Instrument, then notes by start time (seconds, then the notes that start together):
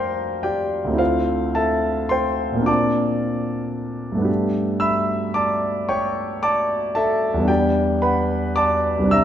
grand piano
Already playing: F2 G3 A3 F4 A#4 C5 D5 F5 G5 A5 A#5 C6 D6
0.43 G4 D5 G5
0.84 D2 A3
0.90 C4 E4
0.98 F4 C5 F5
1.55 A4 E5 A5
2.09 C5 G5 C6
2.52 A#2
2.56 A#3 C4
2.62 D4 F4
2.66 D5 A5 D6
4.12 G2 A3
4.18 B3 D4
4.25 G4
4.80 E5 B5 E6
5.34 D5 A5 D6
5.89 C#5 G5 C#6
6.43 D5 A5 D6
6.95 A4 E5 A5
7.34 E2 G3
7.40 B3 D4
7.48 G4 D5 G5
8.02 B4 F#5 B5
8.56 D5 A5 D6
8.97 C2 G3
9.03 C4 D4
9.10 G4 E5 A#5 E6